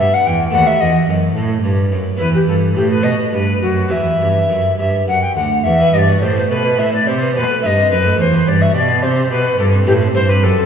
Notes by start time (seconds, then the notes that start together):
Already playing: G4
0.00 G2 E5
0.14 F#5
0.26 E2 G5
0.51 D#2 A3 B3 F#4 F#5
0.55 D#2
0.67 E5
0.81 E2 D#5
1.08 F#2
1.35 A2
1.63 G2
1.91 F#2
2.17 E2 B3 E4 B4
2.35 G4
2.47 G2 A4
2.76 A2 G4
2.90 B4
3.00 B2 A3 B3 F#4 D#5
3.05 B2
3.32 G2 B4
3.62 F#2 F#4
3.88 E2 B3 E4 E5
4.20 G2
4.49 F#2
4.78 G2 E5
5.07 F#2 F#5
5.21 G5
5.35 D2 F#5
5.63 E2 E5
5.80 B3
5.93 G2 G4 D#5
5.98 D5
6.08 F#4
6.22 A2 G4 C5
6.37 B3
6.50 B2 A3 B4
6.65 B3
6.78 A2 E4 E5
6.93 B3 D5
7.07 C3 G4 C5
7.21 B3
7.35 B2 B4
7.50 A3
7.62 G2 D#4 D#5 E5
7.77 C4
7.91 F#2 D#4 B4
8.05 A3
8.19 E2 C5
8.34 B3
8.47 G2 G4 D5
8.61 F#4 E5
8.74 B2 G4 D5
8.88 B3
9.02 C3 C5
9.17 C4
9.30 B2 G4 B4
9.45 F#4
9.58 G2 G4 A4
9.73 C4
9.86 A2 B3 G4
10.01 C4
10.14 G2 E4 C5
10.29 C4 B4
10.43 F#2 G4 A4
10.58 C4